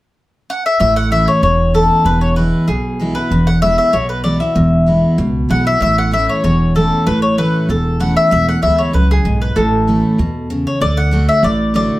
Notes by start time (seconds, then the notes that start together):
0.50 F#5
0.66 E5
0.80 A1 A2 E5
0.96 F#5
1.11 E3 A3 C#4 E4 E5
1.28 C#5
1.42 E1 E2 C#5
1.74 E3 A3 C#4 E4 A4
2.05 E1 E2 B4
2.21 C#5
2.36 E3 G#3 B3 E4 B4
2.68 B1 B2 G#4
3.00 E3 G#3 B3 E4
3.15 B3 E4 B4
3.30 E1 E2
3.47 F#5
3.62 E3 G#3 B3 E4 E5
3.78 E5
3.93 B1 B2 C#5
4.09 B4
4.24 E3 G#3 B3 E4 D5
4.40 B3 E4 E5
4.55 E1 E2
4.86 E3 G#3 B3 E4
5.18 C#2 B2
5.49 B1 E3 G#3 B3 E4 F#5
5.65 B3 E4 E5
5.80 A1 A2 E5
5.98 F#5
6.11 E3 A3 C#4 E4 E5
6.29 C#5
6.43 E1 E2 C#5
6.75 E3 A3 C#4 E4 A4
7.07 A1 A2 B4
7.22 C#5
7.38 E3 A3 C#4 E4 B4
7.69 E1 E2 A4
8.00 E3 A3 C#4 E4 F#5
8.17 E5
8.31 E1 E2 E5
8.48 F#5
8.62 D2 E3 G#3 B3 E4 E5
8.78 C#5
8.93 C#2 F#2 B4
9.11 G#4
9.25 B1 G#2
9.41 B4
9.56 A1 A2 A4
9.87 E3 A3 C#4 E4
10.18 E2 B2
10.50 C#3
10.67 C#5
10.80 D2 D3 D5
10.97 F#5
11.11 D3 A3 D4 F#4
11.29 E5
11.43 A1 A2 D5
11.74 D3 A3 D4 F#4 D5